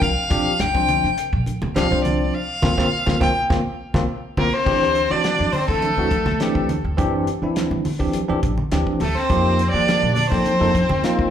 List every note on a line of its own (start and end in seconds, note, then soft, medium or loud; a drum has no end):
0.00 0.15 C2 medium
0.00 0.10 C4 medium
0.00 0.10 D4 medium
0.00 0.11 A#4 medium
0.00 0.62 F5 medium
0.00 kick medium
0.00 closed hi-hat medium
0.30 0.44 C3 loud
0.30 0.51 F3 medium
0.30 0.51 C4 medium
0.30 0.52 D4 medium
0.30 0.52 G4 loud
0.30 kick medium
0.30 closed hi-hat medium
0.59 0.98 C2 medium
0.59 0.66 D4 soft
0.59 0.67 F4 soft
0.59 1.18 G5 loud
0.59 snare loud
0.59 closed hi-hat medium
0.74 1.06 F3 medium
0.74 1.06 C4 medium
0.74 1.06 D4 medium
0.74 1.06 C5 medium
0.74 kick medium
0.74 high conga medium
0.88 closed hi-hat medium
0.88 low conga medium
1.04 1.34 C3 medium
1.04 snare soft
1.18 1.25 D4 soft
1.18 1.26 A#4 soft
1.18 closed hi-hat medium
1.33 1.45 C2 medium
1.33 kick medium
1.46 muted upright bass stroke soft
1.46 closed hi-hat medium
1.46 high conga medium
1.62 1.74 C2 medium
1.62 low conga medium
1.75 1.89 C2 medium
1.75 1.86 F3 loud
1.75 1.86 C4 loud
1.75 1.87 D4 loud
1.75 1.87 G4 loud
1.75 2.03 F5 medium
1.75 snare loud
1.75 closed hi-hat medium
1.90 2.29 C2 medium
1.90 2.34 F3 medium
1.90 2.34 C4 medium
1.90 2.34 D4 medium
1.90 2.34 C5 medium
1.90 high conga medium
2.04 2.36 D5 medium
2.04 closed hi-hat medium
2.04 low conga medium
2.35 3.20 F5 medium
2.62 2.74 C2 medium
2.62 2.72 A#3 medium
2.62 2.72 C4 medium
2.62 2.72 F4 loud
2.62 kick loud
2.62 snare medium
2.62 low conga loud
2.78 2.88 C2 medium
2.78 2.87 A#3 loud
2.78 2.87 C4 loud
2.78 2.87 F4 loud
2.78 kick medium
2.78 snare medium
2.78 low conga loud
3.06 3.17 C2 medium
3.06 3.16 A#3 medium
3.06 3.15 C4 medium
3.06 3.16 F4 medium
3.06 kick medium
3.06 snare medium
3.06 low conga loud
3.20 3.32 C2 loud
3.20 3.30 A#3 medium
3.20 3.30 C4 medium
3.20 3.30 F4 medium
3.20 3.38 G5 loud
3.20 kick medium
3.20 snare medium
3.20 low conga loud
3.50 3.61 C2 medium
3.50 3.59 A#3 loud
3.50 3.60 C4 medium
3.50 3.59 F4 medium
3.50 kick loud
3.50 snare medium
3.50 low conga medium
3.94 4.04 C2 loud
3.94 4.03 A#3 loud
3.94 4.03 C4 loud
3.94 4.03 F4 loud
3.94 kick loud
3.94 snare loud
3.94 low conga loud
4.37 4.48 C2 medium
4.37 4.47 A#3 loud
4.37 4.55 A#3 medium
4.37 4.47 C4 loud
4.37 4.47 F4 loud
4.37 4.55 A#4 medium
4.37 kick medium
4.37 low conga loud
4.53 5.12 C4 medium
4.53 5.13 C5 loud
4.65 5.05 D2 medium
4.65 4.97 E3 medium
4.65 4.97 C4 medium
4.65 4.97 D4 medium
4.65 4.97 G4 medium
4.65 kick medium
4.65 crash medium
4.82 snare soft
4.95 closed hi-hat medium
5.09 5.36 D3 medium
5.09 5.51 E3 medium
5.09 5.51 C4 medium
5.09 5.51 D4 medium
5.09 5.55 D4 medium
5.09 5.52 F#4 medium
5.09 5.54 D5 loud
5.24 snare loud
5.24 closed hi-hat medium
5.39 5.52 G2 medium
5.39 high conga medium
5.53 5.69 C4 medium
5.53 5.67 C5 medium
5.53 open hi-hat medium
5.53 low conga medium
5.68 5.94 D3 medium
5.68 5.89 E3 medium
5.68 6.66 A3 medium
5.68 5.89 C4 medium
5.68 5.89 D4 medium
5.68 6.65 A4 medium
5.68 5.89 A4 medium
5.68 kick medium
5.82 closed hi-hat medium
5.82 high conga medium
5.97 6.22 D2 medium
5.97 6.07 E3 medium
5.97 6.07 C4 medium
5.97 6.08 D4 medium
5.97 6.08 F#4 medium
6.11 6.18 D4 soft
6.11 6.19 G4 soft
6.11 kick medium
6.11 closed hi-hat medium
6.11 high conga medium
6.26 6.38 C2 medium
6.26 snare soft
6.26 low conga medium
6.40 6.72 E3 medium
6.40 6.72 C4 medium
6.40 6.72 D4 medium
6.40 6.72 G4 loud
6.40 snare medium
6.40 closed hi-hat medium
6.55 6.81 D2 medium
6.55 kick medium
6.69 closed hi-hat soft
6.69 high conga medium
6.69 low conga medium
6.84 6.96 D2 medium
6.84 6.91 D4 soft
6.84 6.92 E4 soft
6.97 7.23 F#2 medium
6.97 7.29 E3 loud
6.97 7.29 C4 medium
6.97 7.29 D4 medium
6.97 7.29 G4 loud
6.97 kick medium
6.97 closed hi-hat medium
7.27 muted upright bass stroke soft
7.27 closed hi-hat medium
7.42 7.67 D2 medium
7.42 7.83 E3 medium
7.42 7.83 C4 medium
7.42 7.84 D4 medium
7.42 7.84 E4 medium
7.56 snare loud
7.56 closed hi-hat medium
7.71 7.83 D3 medium
7.71 high conga medium
7.85 muted upright bass stroke soft
7.85 open hi-hat medium
7.85 low conga medium
7.99 8.12 D2 medium
7.99 8.20 E3 medium
7.99 8.20 C4 medium
7.99 8.20 D4 medium
7.99 8.21 G4 medium
7.99 kick medium
8.13 muted upright bass stroke soft
8.13 closed hi-hat medium
8.13 high conga medium
8.28 8.42 C2 medium
8.28 8.38 E3 loud
8.28 8.39 C4 medium
8.28 8.39 D4 medium
8.28 8.39 G4 loud
8.42 8.56 A1 medium
8.42 8.50 D4 soft
8.42 8.50 G4 soft
8.42 kick medium
8.42 closed hi-hat medium
8.42 high conga medium
8.58 low conga medium
8.72 8.85 D2 medium
8.72 9.03 E3 medium
8.72 9.03 C4 medium
8.72 9.04 D4 medium
8.72 9.04 G4 medium
8.72 snare loud
8.72 closed hi-hat medium
8.87 kick medium
9.00 9.14 D2 medium
9.00 9.17 A3 medium
9.00 9.17 A4 medium
9.00 open hi-hat medium
9.00 high conga medium
9.00 low conga medium
9.16 9.74 C4 medium
9.16 9.22 D4 soft
9.16 9.23 G4 soft
9.16 9.70 C5 medium
9.29 9.69 F2 medium
9.29 9.61 F3 medium
9.29 9.61 A#3 medium
9.29 9.61 D#4 medium
9.29 9.61 G4 loud
9.29 kick medium
9.29 closed hi-hat medium
9.59 closed hi-hat medium
9.71 10.15 D#3 medium
9.71 10.15 F3 medium
9.71 9.99 F3 medium
9.71 10.15 A#3 medium
9.71 10.14 D4 medium
9.71 10.15 G4 medium
9.71 10.12 D5 loud
9.88 snare loud
9.88 closed hi-hat medium
10.02 10.15 A#2 medium
10.02 high conga medium
10.14 10.31 D4 medium
10.14 10.29 D5 loud
10.14 open hi-hat medium
10.14 low conga medium
10.30 10.52 F3 medium
10.30 10.57 F3 medium
10.30 10.52 A#3 medium
10.30 11.28 C4 medium
10.30 10.52 D#4 medium
10.30 10.52 A4 medium
10.30 11.28 C5 medium
10.30 kick medium
10.30 snare soft
10.45 closed hi-hat medium
10.45 high conga medium
10.60 10.86 F2 medium
10.60 10.70 F3 medium
10.60 10.71 A#3 medium
10.60 10.71 D#4 medium
10.60 10.71 A4 medium
10.60 snare soft
10.74 kick medium
10.74 closed hi-hat medium
10.74 high conga medium
10.89 11.02 D#2 medium
10.89 low conga medium
11.03 11.30 F3 medium
11.03 11.30 A#3 medium
11.03 11.30 D#4 medium
11.03 11.30 F4 loud
11.03 snare medium
11.03 closed hi-hat medium
11.19 11.30 F2 medium
11.19 kick medium